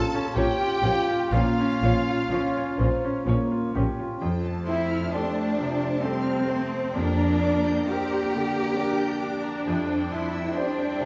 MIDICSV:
0, 0, Header, 1, 10, 480
1, 0, Start_track
1, 0, Key_signature, -1, "major"
1, 0, Tempo, 960000
1, 666, Time_signature, 3, 2, 24, 8
1, 2109, Tempo, 906344
1, 3549, Tempo, 952381
1, 4029, Tempo, 883652
1, 5747, End_track
2, 0, Start_track
2, 0, Title_t, "Violin section"
2, 0, Program_c, 0, 48
2, 0, Note_on_c, 0, 69, 107
2, 173, Note_on_c, 0, 67, 103
2, 182, Note_off_c, 0, 69, 0
2, 656, Note_on_c, 0, 65, 89
2, 661, Note_off_c, 0, 67, 0
2, 1613, Note_off_c, 0, 65, 0
2, 2100, Note_on_c, 0, 72, 70
2, 2102, Note_on_c, 0, 79, 61
2, 2217, Note_off_c, 0, 79, 0
2, 2228, Note_on_c, 0, 81, 58
2, 2348, Note_on_c, 0, 84, 54
2, 2349, Note_off_c, 0, 81, 0
2, 2462, Note_on_c, 0, 89, 57
2, 2470, Note_off_c, 0, 84, 0
2, 2586, Note_on_c, 0, 84, 64
2, 2587, Note_off_c, 0, 89, 0
2, 2706, Note_on_c, 0, 81, 53
2, 2709, Note_off_c, 0, 84, 0
2, 2826, Note_on_c, 0, 79, 58
2, 2829, Note_off_c, 0, 81, 0
2, 2947, Note_on_c, 0, 81, 55
2, 2948, Note_off_c, 0, 79, 0
2, 3067, Note_off_c, 0, 81, 0
2, 3067, Note_on_c, 0, 84, 62
2, 3180, Note_on_c, 0, 89, 54
2, 3187, Note_off_c, 0, 84, 0
2, 3299, Note_on_c, 0, 84, 53
2, 3304, Note_off_c, 0, 89, 0
2, 3419, Note_on_c, 0, 81, 51
2, 3424, Note_off_c, 0, 84, 0
2, 3523, Note_off_c, 0, 72, 0
2, 3540, Note_on_c, 0, 79, 62
2, 3541, Note_on_c, 0, 74, 63
2, 3545, Note_off_c, 0, 81, 0
2, 3655, Note_off_c, 0, 79, 0
2, 3661, Note_on_c, 0, 82, 54
2, 3782, Note_on_c, 0, 86, 58
2, 3786, Note_off_c, 0, 82, 0
2, 3907, Note_on_c, 0, 91, 52
2, 3908, Note_off_c, 0, 86, 0
2, 4024, Note_on_c, 0, 86, 59
2, 4028, Note_off_c, 0, 91, 0
2, 4151, Note_off_c, 0, 86, 0
2, 4151, Note_on_c, 0, 82, 51
2, 4269, Note_on_c, 0, 79, 54
2, 4274, Note_off_c, 0, 82, 0
2, 4392, Note_off_c, 0, 79, 0
2, 4393, Note_on_c, 0, 82, 54
2, 4508, Note_on_c, 0, 86, 60
2, 4513, Note_off_c, 0, 82, 0
2, 4626, Note_on_c, 0, 91, 52
2, 4630, Note_off_c, 0, 86, 0
2, 4748, Note_off_c, 0, 91, 0
2, 4748, Note_on_c, 0, 86, 54
2, 4868, Note_on_c, 0, 82, 48
2, 4870, Note_off_c, 0, 86, 0
2, 4966, Note_off_c, 0, 74, 0
2, 4990, Note_on_c, 0, 72, 59
2, 4990, Note_on_c, 0, 76, 57
2, 4991, Note_off_c, 0, 82, 0
2, 5104, Note_off_c, 0, 76, 0
2, 5112, Note_on_c, 0, 79, 55
2, 5234, Note_off_c, 0, 79, 0
2, 5234, Note_on_c, 0, 84, 54
2, 5355, Note_off_c, 0, 84, 0
2, 5359, Note_on_c, 0, 88, 48
2, 5475, Note_on_c, 0, 84, 55
2, 5477, Note_off_c, 0, 88, 0
2, 5590, Note_on_c, 0, 79, 47
2, 5594, Note_off_c, 0, 84, 0
2, 5710, Note_off_c, 0, 79, 0
2, 5711, Note_on_c, 0, 76, 50
2, 5747, Note_off_c, 0, 72, 0
2, 5747, Note_off_c, 0, 76, 0
2, 5747, End_track
3, 0, Start_track
3, 0, Title_t, "Violin section"
3, 0, Program_c, 1, 48
3, 0, Note_on_c, 1, 81, 125
3, 178, Note_on_c, 1, 79, 116
3, 183, Note_off_c, 1, 81, 0
3, 662, Note_on_c, 1, 77, 107
3, 663, Note_off_c, 1, 79, 0
3, 1636, Note_off_c, 1, 77, 0
3, 2100, Note_on_c, 1, 81, 67
3, 3523, Note_off_c, 1, 81, 0
3, 3550, Note_on_c, 1, 82, 67
3, 4971, Note_off_c, 1, 82, 0
3, 4994, Note_on_c, 1, 79, 67
3, 5747, Note_off_c, 1, 79, 0
3, 5747, End_track
4, 0, Start_track
4, 0, Title_t, "Flute"
4, 0, Program_c, 2, 73
4, 171, Note_on_c, 2, 79, 98
4, 640, Note_off_c, 2, 79, 0
4, 654, Note_on_c, 2, 77, 90
4, 1612, Note_off_c, 2, 77, 0
4, 2353, Note_on_c, 2, 76, 75
4, 2590, Note_on_c, 2, 74, 62
4, 2598, Note_off_c, 2, 76, 0
4, 3075, Note_on_c, 2, 72, 74
4, 3083, Note_off_c, 2, 74, 0
4, 3545, Note_off_c, 2, 72, 0
4, 3548, Note_on_c, 2, 74, 71
4, 4032, Note_on_c, 2, 79, 81
4, 4040, Note_off_c, 2, 74, 0
4, 4993, Note_off_c, 2, 79, 0
4, 5240, Note_on_c, 2, 76, 68
4, 5476, Note_on_c, 2, 74, 71
4, 5484, Note_off_c, 2, 76, 0
4, 5747, Note_off_c, 2, 74, 0
4, 5747, End_track
5, 0, Start_track
5, 0, Title_t, "Oboe"
5, 0, Program_c, 3, 68
5, 176, Note_on_c, 3, 67, 95
5, 662, Note_on_c, 3, 65, 86
5, 669, Note_off_c, 3, 67, 0
5, 1636, Note_off_c, 3, 65, 0
5, 5747, End_track
6, 0, Start_track
6, 0, Title_t, "Grand piano"
6, 0, Program_c, 4, 0
6, 0, Control_c, 4, 64, 127
6, 0, Note_on_c, 4, 46, 92
6, 0, Note_on_c, 4, 61, 68
6, 0, Note_on_c, 4, 65, 68
6, 0, Note_on_c, 4, 73, 70
6, 74, Note_off_c, 4, 61, 0
6, 74, Note_on_c, 4, 61, 66
6, 140, Note_off_c, 4, 65, 0
6, 189, Note_off_c, 4, 73, 0
6, 189, Note_on_c, 4, 73, 71
6, 257, Note_off_c, 4, 61, 0
6, 304, Note_on_c, 4, 65, 63
6, 375, Note_off_c, 4, 73, 0
6, 427, Note_on_c, 4, 67, 55
6, 494, Note_off_c, 4, 65, 0
6, 545, Note_off_c, 4, 67, 0
6, 550, Note_on_c, 4, 65, 60
6, 647, Note_off_c, 4, 46, 0
6, 677, Control_c, 4, 64, 0
6, 677, Note_on_c, 4, 46, 76
6, 746, Note_off_c, 4, 65, 0
6, 760, Control_c, 4, 64, 127
6, 800, Note_on_c, 4, 61, 59
6, 924, Note_on_c, 4, 73, 59
6, 994, Note_off_c, 4, 61, 0
6, 1048, Note_on_c, 4, 65, 57
6, 1116, Note_off_c, 4, 73, 0
6, 1171, Note_on_c, 4, 61, 57
6, 1236, Note_off_c, 4, 65, 0
6, 1288, Note_on_c, 4, 73, 54
6, 1356, Note_off_c, 4, 61, 0
6, 1408, Note_on_c, 4, 65, 58
6, 1474, Note_off_c, 4, 73, 0
6, 1523, Note_on_c, 4, 61, 52
6, 1594, Note_off_c, 4, 65, 0
6, 1643, Note_on_c, 4, 73, 62
6, 1712, Note_off_c, 4, 61, 0
6, 1759, Note_on_c, 4, 65, 53
6, 1832, Note_off_c, 4, 73, 0
6, 1878, Note_on_c, 4, 67, 47
6, 1950, Note_off_c, 4, 65, 0
6, 1996, Note_off_c, 4, 67, 0
6, 1997, Note_on_c, 4, 65, 50
6, 2096, Note_off_c, 4, 46, 0
6, 2108, Note_on_c, 4, 41, 62
6, 2111, Note_off_c, 4, 65, 0
6, 2121, Control_c, 4, 64, 0
6, 2209, Control_c, 4, 64, 127
6, 2360, Note_on_c, 4, 60, 45
6, 2601, Note_on_c, 4, 67, 44
6, 2604, Note_on_c, 4, 69, 49
6, 2741, Note_off_c, 4, 60, 0
6, 2815, Note_off_c, 4, 67, 0
6, 2817, Note_off_c, 4, 69, 0
6, 2843, Note_on_c, 4, 48, 44
6, 3079, Note_on_c, 4, 67, 48
6, 3079, Note_on_c, 4, 69, 51
6, 3218, Note_off_c, 4, 48, 0
6, 3291, Note_off_c, 4, 67, 0
6, 3291, Note_off_c, 4, 69, 0
6, 3317, Note_on_c, 4, 60, 48
6, 3528, Note_off_c, 4, 41, 0
6, 3554, Note_off_c, 4, 60, 0
6, 3557, Note_on_c, 4, 41, 60
6, 3561, Control_c, 4, 64, 0
6, 3651, Control_c, 4, 64, 127
6, 3798, Note_on_c, 4, 62, 48
6, 4042, Note_on_c, 4, 67, 44
6, 4042, Note_on_c, 4, 70, 48
6, 4184, Note_off_c, 4, 62, 0
6, 4260, Note_off_c, 4, 67, 0
6, 4260, Note_off_c, 4, 70, 0
6, 4282, Note_on_c, 4, 50, 45
6, 4524, Note_on_c, 4, 67, 48
6, 4527, Note_on_c, 4, 70, 48
6, 4660, Note_off_c, 4, 50, 0
6, 4735, Note_off_c, 4, 67, 0
6, 4737, Note_off_c, 4, 70, 0
6, 4762, Note_on_c, 4, 62, 46
6, 4975, Note_off_c, 4, 41, 0
6, 4997, Note_off_c, 4, 62, 0
6, 4999, Note_on_c, 4, 41, 62
6, 5003, Control_c, 4, 64, 0
6, 5108, Control_c, 4, 64, 127
6, 5245, Note_on_c, 4, 64, 45
6, 5484, Note_on_c, 4, 67, 44
6, 5489, Note_on_c, 4, 72, 47
6, 5623, Note_off_c, 4, 64, 0
6, 5694, Note_off_c, 4, 67, 0
6, 5697, Note_off_c, 4, 72, 0
6, 5720, Note_on_c, 4, 48, 44
6, 5747, Note_off_c, 4, 41, 0
6, 5747, Note_off_c, 4, 48, 0
6, 5747, End_track
7, 0, Start_track
7, 0, Title_t, "French horn section"
7, 0, Program_c, 5, 60
7, 0, Note_on_c, 5, 65, 86
7, 180, Note_off_c, 5, 65, 0
7, 184, Note_on_c, 5, 67, 90
7, 420, Note_off_c, 5, 67, 0
7, 428, Note_on_c, 5, 65, 85
7, 667, Note_on_c, 5, 61, 77
7, 670, Note_off_c, 5, 65, 0
7, 1103, Note_off_c, 5, 61, 0
7, 1162, Note_on_c, 5, 61, 86
7, 1383, Note_off_c, 5, 61, 0
7, 1393, Note_on_c, 5, 72, 81
7, 1629, Note_on_c, 5, 58, 83
7, 1635, Note_off_c, 5, 72, 0
7, 1871, Note_on_c, 5, 61, 79
7, 1874, Note_off_c, 5, 58, 0
7, 2097, Note_on_c, 5, 57, 77
7, 2098, Note_on_c, 5, 67, 71
7, 2103, Note_off_c, 5, 61, 0
7, 3522, Note_off_c, 5, 57, 0
7, 3541, Note_on_c, 5, 58, 69
7, 4904, Note_off_c, 5, 58, 0
7, 4904, Note_off_c, 5, 67, 0
7, 4996, Note_on_c, 5, 55, 67
7, 4996, Note_on_c, 5, 64, 70
7, 5747, Note_off_c, 5, 55, 0
7, 5747, Note_off_c, 5, 64, 0
7, 5747, End_track
8, 0, Start_track
8, 0, Title_t, "Viola section"
8, 0, Program_c, 6, 48
8, 179, Note_on_c, 6, 53, 72
8, 181, Note_on_c, 6, 61, 73
8, 219, Note_off_c, 6, 53, 0
8, 221, Note_off_c, 6, 61, 0
8, 413, Note_on_c, 6, 53, 65
8, 413, Note_on_c, 6, 61, 66
8, 453, Note_off_c, 6, 53, 0
8, 453, Note_off_c, 6, 61, 0
8, 659, Note_on_c, 6, 61, 72
8, 661, Note_on_c, 6, 53, 75
8, 699, Note_off_c, 6, 61, 0
8, 701, Note_off_c, 6, 53, 0
8, 912, Note_on_c, 6, 53, 62
8, 912, Note_on_c, 6, 61, 61
8, 952, Note_off_c, 6, 53, 0
8, 952, Note_off_c, 6, 61, 0
8, 1152, Note_on_c, 6, 53, 65
8, 1153, Note_on_c, 6, 61, 64
8, 1192, Note_off_c, 6, 53, 0
8, 1193, Note_off_c, 6, 61, 0
8, 1390, Note_on_c, 6, 61, 59
8, 1395, Note_on_c, 6, 53, 60
8, 1430, Note_off_c, 6, 61, 0
8, 1435, Note_off_c, 6, 53, 0
8, 1632, Note_on_c, 6, 53, 62
8, 1633, Note_on_c, 6, 61, 65
8, 1672, Note_off_c, 6, 53, 0
8, 1673, Note_off_c, 6, 61, 0
8, 1874, Note_on_c, 6, 53, 60
8, 1876, Note_on_c, 6, 61, 56
8, 1914, Note_off_c, 6, 53, 0
8, 1916, Note_off_c, 6, 61, 0
8, 2584, Note_on_c, 6, 57, 67
8, 2811, Note_off_c, 6, 57, 0
8, 2825, Note_on_c, 6, 53, 60
8, 3059, Note_on_c, 6, 55, 65
8, 3066, Note_off_c, 6, 53, 0
8, 3298, Note_off_c, 6, 55, 0
8, 3302, Note_on_c, 6, 57, 64
8, 3547, Note_off_c, 6, 57, 0
8, 3547, Note_on_c, 6, 58, 76
8, 4019, Note_off_c, 6, 58, 0
8, 4027, Note_on_c, 6, 60, 67
8, 4267, Note_on_c, 6, 58, 60
8, 4269, Note_off_c, 6, 60, 0
8, 4510, Note_off_c, 6, 58, 0
8, 4511, Note_on_c, 6, 62, 80
8, 5468, Note_on_c, 6, 60, 77
8, 5474, Note_off_c, 6, 62, 0
8, 5747, Note_off_c, 6, 60, 0
8, 5747, End_track
9, 0, Start_track
9, 0, Title_t, "Cello section"
9, 0, Program_c, 7, 48
9, 182, Note_on_c, 7, 46, 86
9, 222, Note_off_c, 7, 46, 0
9, 416, Note_on_c, 7, 46, 75
9, 456, Note_off_c, 7, 46, 0
9, 665, Note_on_c, 7, 46, 79
9, 705, Note_off_c, 7, 46, 0
9, 914, Note_on_c, 7, 46, 69
9, 954, Note_off_c, 7, 46, 0
9, 1156, Note_on_c, 7, 46, 66
9, 1196, Note_off_c, 7, 46, 0
9, 1396, Note_on_c, 7, 46, 66
9, 1436, Note_off_c, 7, 46, 0
9, 1639, Note_on_c, 7, 46, 75
9, 1679, Note_off_c, 7, 46, 0
9, 1880, Note_on_c, 7, 46, 62
9, 1920, Note_off_c, 7, 46, 0
9, 2350, Note_on_c, 7, 64, 85
9, 2574, Note_off_c, 7, 64, 0
9, 2594, Note_on_c, 7, 62, 75
9, 3066, Note_on_c, 7, 60, 80
9, 3070, Note_off_c, 7, 62, 0
9, 3548, Note_off_c, 7, 60, 0
9, 3551, Note_on_c, 7, 62, 84
9, 4031, Note_off_c, 7, 62, 0
9, 4031, Note_on_c, 7, 67, 80
9, 4993, Note_off_c, 7, 67, 0
9, 5236, Note_on_c, 7, 64, 73
9, 5459, Note_off_c, 7, 64, 0
9, 5476, Note_on_c, 7, 62, 78
9, 5747, Note_off_c, 7, 62, 0
9, 5747, End_track
10, 0, Start_track
10, 0, Title_t, "Double bass section"
10, 0, Program_c, 8, 48
10, 180, Note_on_c, 8, 34, 80
10, 220, Note_off_c, 8, 34, 0
10, 414, Note_on_c, 8, 34, 71
10, 454, Note_off_c, 8, 34, 0
10, 662, Note_on_c, 8, 34, 79
10, 702, Note_off_c, 8, 34, 0
10, 913, Note_on_c, 8, 34, 70
10, 953, Note_off_c, 8, 34, 0
10, 1150, Note_on_c, 8, 34, 73
10, 1190, Note_off_c, 8, 34, 0
10, 1396, Note_on_c, 8, 34, 72
10, 1436, Note_off_c, 8, 34, 0
10, 1631, Note_on_c, 8, 34, 69
10, 1671, Note_off_c, 8, 34, 0
10, 1878, Note_on_c, 8, 34, 68
10, 1918, Note_off_c, 8, 34, 0
10, 2112, Note_on_c, 8, 41, 72
10, 2512, Note_off_c, 8, 41, 0
10, 3550, Note_on_c, 8, 41, 69
10, 3951, Note_off_c, 8, 41, 0
10, 4995, Note_on_c, 8, 41, 64
10, 5397, Note_off_c, 8, 41, 0
10, 5747, End_track
0, 0, End_of_file